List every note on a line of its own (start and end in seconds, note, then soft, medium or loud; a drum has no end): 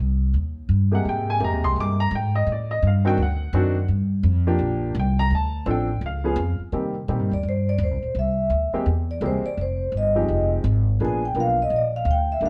0.00 0.32 C2 medium
0.34 0.68 D#2 medium
0.69 1.03 G2 medium
0.92 1.38 C3 medium
0.92 1.38 G#3 medium
0.92 1.38 A#3 medium
0.92 1.38 G4 medium
0.92 1.06 F#5 medium
1.05 1.39 G#2 medium
1.05 1.29 G5 medium
1.30 1.41 G#5 medium
1.40 1.52 F2 medium
1.40 1.94 C3 medium
1.40 1.94 G#3 medium
1.40 1.94 A#3 medium
1.40 1.94 G4 medium
1.44 1.64 A#5 medium
1.52 1.63 D#2 medium
1.64 1.75 C2 medium
1.64 1.76 C6 loud
1.76 2.10 G2 medium
1.80 2.00 D6 loud
2.00 2.12 A#5 loud
2.11 2.46 G#2 loud
2.15 2.35 G5 medium
2.35 2.47 D#5 medium
2.47 2.81 A2 medium
2.52 2.71 D5 medium
2.71 2.83 D#5 medium
2.82 3.17 G2 loud
2.87 3.07 F5 medium
3.05 3.16 D#3 medium
3.05 3.17 C4 medium
3.05 3.17 D4 medium
3.05 3.17 F#4 medium
3.05 3.19 G5 loud
3.17 3.52 D2 medium
3.22 3.87 F#5 medium
3.53 3.88 F#2 loud
3.53 3.74 D#3 medium
3.53 3.74 C4 medium
3.53 3.74 D4 medium
3.53 3.74 F#4 medium
3.88 4.23 G2 medium
4.23 4.58 F2 loud
4.47 4.93 F3 medium
4.47 4.93 A#3 medium
4.47 4.93 D4 medium
4.47 4.93 G4 medium
4.59 4.94 A#1 medium
4.95 5.29 C2 loud
4.99 5.19 G5 medium
5.19 5.31 A#5 loud
5.30 5.65 D2 medium
5.35 5.66 A5 medium
5.66 6.01 A1 loud
5.66 5.87 F3 medium
5.66 5.87 C4 medium
5.66 5.87 D4 medium
5.66 5.87 A4 medium
5.71 6.02 G5 medium
6.01 6.35 C#2 medium
6.06 6.58 F5 medium
6.24 6.36 F3 medium
6.24 6.36 B3 medium
6.24 6.36 C#4 medium
6.24 6.37 G#4 medium
6.36 6.57 F2 loud
6.59 muted upright bass stroke soft
6.72 7.07 C3 medium
6.72 6.93 D#3 medium
6.72 6.93 G3 medium
6.72 6.93 A#3 medium
6.72 6.93 C4 medium
6.72 6.93 G4 medium
7.08 7.19 A#2 medium
7.08 7.29 D#3 medium
7.08 7.29 G3 medium
7.08 7.29 A#3 medium
7.08 7.29 C4 medium
7.08 7.29 G4 medium
7.19 7.31 G2 soft
7.31 7.43 D#2 medium
7.31 7.45 D5 medium
7.43 7.78 G2 medium
7.49 7.68 C5 medium
7.69 7.81 D5 loud
7.78 7.90 D#2 loud
7.83 8.15 C5 medium
7.90 8.02 C2 medium
8.03 8.14 A#1 medium
8.15 8.49 C2 medium
8.19 8.71 E5 medium
8.50 8.71 D2 medium
8.73 8.85 E3 medium
8.73 8.85 G#3 medium
8.73 8.85 A#3 medium
8.73 8.85 C4 medium
8.73 8.86 G4 medium
8.73 muted upright bass stroke soft
8.86 9.21 E2 medium
9.11 9.22 D5 medium
9.21 9.42 C2 loud
9.21 9.42 E3 medium
9.21 9.42 G#3 medium
9.21 9.42 A#3 medium
9.21 9.42 C4 medium
9.21 9.42 G4 medium
9.26 9.46 C5 medium
9.44 9.58 D5 loud
9.44 muted upright bass stroke soft
9.57 9.91 F1 medium
9.61 9.93 C5 medium
9.92 10.27 G1 medium
9.97 10.49 D#5 medium
10.15 10.61 F3 medium
10.15 10.61 G#3 medium
10.15 10.62 C4 medium
10.15 10.62 D#4 medium
10.15 10.62 G4 medium
10.28 10.63 F1 medium
10.64 10.98 G#1 loud
11.00 11.34 A#1 medium
11.00 11.20 F3 medium
11.00 11.20 A#3 medium
11.00 11.20 B3 medium
11.00 11.21 D4 medium
11.00 11.21 G#4 medium
11.05 11.24 G#5 medium
11.25 11.36 G5 loud
11.35 11.69 B1 medium
11.35 11.56 F3 medium
11.35 11.56 A#3 medium
11.35 11.56 B3 medium
11.35 11.56 D4 medium
11.35 11.56 A#4 medium
11.40 11.60 F5 medium
11.62 11.73 D#5 medium
11.70 12.04 A#1 medium
11.76 11.95 D5 medium
11.96 12.08 F5 medium
12.05 12.40 D2 loud
12.11 12.30 G5 medium
12.32 12.43 E5 medium
12.41 12.49 D#2 medium
12.41 12.49 D#3 medium
12.41 12.49 G3 medium
12.41 12.49 A#3 medium
12.41 12.49 D4 medium
12.41 12.49 G4 medium
12.46 12.49 F5 medium